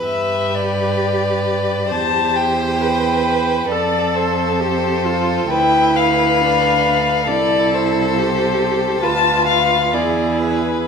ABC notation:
X:1
M:4/4
L:1/8
Q:1/4=67
K:Am
V:1 name="Violin"
e d3 a g3 | d c3 g f3 | d c3 a f d B |]
V:2 name="Violin"
B4 c4 | A4 B4 | A4 B2 ^G2 |]
V:3 name="Viola"
G4 G2 B2 | A2 G F E2 D2 | E2 G2 F2 E2 |]
V:4 name="Cello" clef=bass
G,,4 E,,4 | F,,4 D,,4 | C,,4 D,,2 E,,2 |]